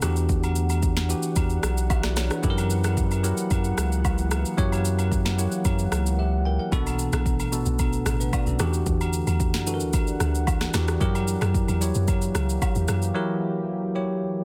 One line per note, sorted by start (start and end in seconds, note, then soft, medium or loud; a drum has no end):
0.00 1.14 E2 loud
0.00 0.88 E3 medium
0.00 6.68 E3 medium
0.00 6.68 B3 medium
0.00 0.89 D4 medium
0.00 2.41 D4 medium
0.00 0.89 F#4 medium
0.00 0.89 G4 loud
0.00 8.56 F#5 medium
0.00 cross-stick medium
0.00 impact medium
0.00 high agogo medium
0.00 shaker medium
0.16 shaker medium
0.29 kick loud
0.29 shaker medium
0.43 high agogo medium
0.43 shaker soft
0.56 shaker medium
0.69 high agogo medium
0.69 shaker medium
0.83 kick medium
0.83 shaker medium
0.97 snare medium
0.97 high agogo medium
0.97 shaker medium
1.09 1.95 E3 medium
1.09 1.90 D4 medium
1.09 1.90 F#4 medium
1.09 1.89 G4 medium
1.09 shaker medium
1.23 shaker medium
1.36 1.59 E2 loud
1.36 kick loud
1.36 high agogo medium
1.36 shaker medium
1.50 shaker soft
1.63 2.30 B1 loud
1.63 cross-stick loud
1.63 high agogo medium
1.63 shaker medium
1.78 shaker medium
1.90 2.04 G4 medium
1.90 2.03 E5 medium
1.90 kick medium
1.90 high agogo medium
1.90 low woodblock medium
1.90 shaker medium
2.03 2.17 F#4 medium
2.03 2.16 D5 medium
2.03 cross-stick medium
2.03 snare medium
2.03 shaker soft
2.16 2.30 E4 medium
2.16 2.30 C#5 medium
2.16 cross-stick medium
2.16 snare medium
2.16 high agogo medium
2.16 shaker medium
2.30 2.56 D4 medium
2.30 2.56 B4 medium
2.30 cross-stick loud
2.30 shaker medium
2.43 3.33 F#2 loud
2.43 3.08 F#3 loud
2.43 6.68 A#3 medium
2.43 3.08 E4 loud
2.43 3.08 G4 loud
2.43 2.50 A4 medium
2.43 kick loud
2.43 shaker medium
2.50 3.12 A#4 loud
2.58 high agogo medium
2.58 shaker soft
2.70 shaker medium
2.84 cross-stick medium
2.84 high agogo medium
2.84 shaker medium
2.97 kick medium
2.97 shaker medium
3.11 high agogo medium
3.11 shaker medium
3.23 4.10 F#3 medium
3.23 4.10 E4 medium
3.23 4.10 G4 medium
3.23 4.10 A#4 medium
3.23 shaker medium
3.37 shaker medium
3.51 3.73 F#2 loud
3.51 kick loud
3.51 high agogo medium
3.51 shaker medium
3.64 shaker soft
3.78 4.45 C#2 loud
3.78 cross-stick medium
3.78 high agogo medium
3.78 shaker medium
3.92 shaker medium
4.05 kick loud
4.05 high agogo medium
4.05 low woodblock medium
4.05 shaker medium
4.18 shaker soft
4.31 cross-stick medium
4.31 high agogo medium
4.31 shaker medium
4.45 shaker medium
4.57 5.48 F#2 loud
4.57 5.22 F#3 loud
4.57 5.23 E4 medium
4.57 5.23 G4 loud
4.57 5.23 C#5 loud
4.57 kick loud
4.57 shaker medium
4.72 high agogo medium
4.72 shaker soft
4.85 shaker medium
4.99 high agogo medium
4.99 shaker medium
5.12 kick medium
5.12 shaker medium
5.25 snare medium
5.25 high agogo medium
5.25 shaker medium
5.38 6.24 F#3 medium
5.38 6.24 E4 medium
5.38 6.18 G4 medium
5.38 6.19 C#5 medium
5.38 shaker loud
5.52 shaker medium
5.65 5.87 F#2 loud
5.65 kick loud
5.65 high agogo medium
5.65 shaker medium
5.79 shaker medium
5.92 6.59 C#2 loud
5.92 cross-stick medium
5.92 high agogo medium
5.92 shaker medium
6.06 shaker medium
6.19 6.45 G4 medium
6.19 6.44 E5 medium
6.45 6.59 A#4 medium
6.45 6.59 G5 medium
6.59 6.85 A#4 medium
6.59 6.85 F#5 medium
6.72 7.08 B1 loud
6.72 7.37 B2 loud
6.72 8.58 D3 medium
6.72 8.58 A3 medium
6.72 7.37 B3 loud
6.72 8.58 B3 medium
6.72 7.37 D4 loud
6.72 7.37 A4 loud
6.72 kick loud
6.72 shaker medium
6.87 high agogo medium
6.87 shaker soft
6.99 shaker medium
7.13 7.41 B1 loud
7.13 cross-stick loud
7.13 high agogo medium
7.13 shaker medium
7.26 kick medium
7.26 shaker medium
7.40 7.63 A1 loud
7.40 high agogo medium
7.40 shaker medium
7.52 8.38 B2 medium
7.52 8.38 B3 medium
7.52 7.80 D4 medium
7.52 7.80 A4 medium
7.52 shaker medium
7.66 8.01 B1 medium
7.66 shaker medium
7.79 kick loud
7.79 high agogo medium
7.79 shaker medium
7.93 shaker medium
8.06 8.30 A1 medium
8.06 cross-stick loud
8.06 high agogo medium
8.06 shaker medium
8.20 8.33 D4 medium
8.20 8.32 B4 medium
8.20 shaker medium
8.33 8.47 F#4 medium
8.33 8.46 D5 medium
8.33 kick medium
8.33 high agogo medium
8.33 low woodblock medium
8.33 shaker medium
8.46 8.58 B1 medium
8.46 8.73 C#4 medium
8.46 8.72 A4 medium
8.46 shaker medium
8.59 8.83 E2 loud
8.59 9.45 E3 medium
8.59 10.99 E3 medium
8.59 10.99 G3 medium
8.59 9.46 D4 medium
8.59 10.99 D4 medium
8.59 9.46 F#4 medium
8.59 9.46 G4 loud
8.59 10.99 F#5 medium
8.59 cross-stick loud
8.59 high agogo medium
8.59 shaker medium
8.73 shaker medium
8.86 9.22 E2 loud
8.86 kick loud
8.86 shaker medium
9.01 high agogo medium
9.01 shaker soft
9.13 shaker medium
9.27 9.55 E2 loud
9.27 high agogo medium
9.27 shaker medium
9.40 kick medium
9.40 shaker medium
9.54 9.82 F#2 medium
9.54 snare medium
9.54 high agogo medium
9.54 shaker medium
9.66 10.53 E3 medium
9.66 10.53 D4 medium
9.66 10.53 F#4 medium
9.66 9.74 A4 medium
9.66 shaker medium
9.74 10.56 A#4 medium
9.80 10.16 D2 medium
9.80 shaker medium
9.93 kick loud
9.93 high agogo medium
9.93 shaker medium
10.07 shaker soft
10.20 10.68 D2 loud
10.20 cross-stick medium
10.20 high agogo medium
10.20 shaker medium
10.35 shaker medium
10.47 kick loud
10.47 high agogo medium
10.47 low woodblock medium
10.47 shaker medium
10.61 cross-stick medium
10.61 snare medium
10.61 shaker medium
10.74 10.98 E2 medium
10.74 10.96 E3 medium
10.74 10.96 D4 medium
10.74 10.96 F#4 medium
10.74 10.96 G4 medium
10.74 cross-stick medium
10.74 snare medium
10.74 high agogo medium
10.74 shaker medium
10.88 cross-stick loud
10.88 shaker medium
11.00 11.37 F#2 loud
11.00 14.44 E3 medium
11.00 11.65 F#3 loud
11.00 14.44 F#3 medium
11.00 14.44 A#3 medium
11.00 11.66 E4 loud
11.00 14.44 G4 medium
11.00 11.66 G4 loud
11.00 11.66 A#4 loud
11.00 kick loud
11.00 shaker medium
11.15 high agogo medium
11.15 shaker medium
11.28 shaker medium
11.41 11.65 F#2 loud
11.41 cross-stick loud
11.41 high agogo medium
11.41 shaker medium
11.54 kick medium
11.54 shaker medium
11.68 11.92 E2 medium
11.68 high agogo medium
11.68 shaker medium
11.81 12.67 F#3 medium
11.81 12.67 E4 medium
11.81 12.67 G4 medium
11.81 12.68 C#5 medium
11.81 shaker medium
11.94 12.30 F#2 medium
11.94 shaker medium
12.08 kick loud
12.08 high agogo medium
12.08 shaker medium
12.22 shaker medium
12.35 12.58 C#2 medium
12.35 cross-stick medium
12.35 high agogo medium
12.35 shaker medium
12.49 shaker medium
12.62 kick loud
12.62 high agogo medium
12.62 low woodblock medium
12.62 shaker medium
12.75 12.87 E2 loud
12.75 shaker medium
12.88 13.12 F#2 medium
12.88 cross-stick medium
12.88 high agogo medium
12.88 shaker medium
13.02 shaker medium
13.15 13.80 F#3 loud
13.15 13.80 E4 loud
13.15 13.80 G4 medium
13.15 13.80 A#4 loud
13.95 14.44 F#3 medium
13.95 14.44 E4 medium
13.95 14.44 G4 medium
13.95 14.44 C#5 medium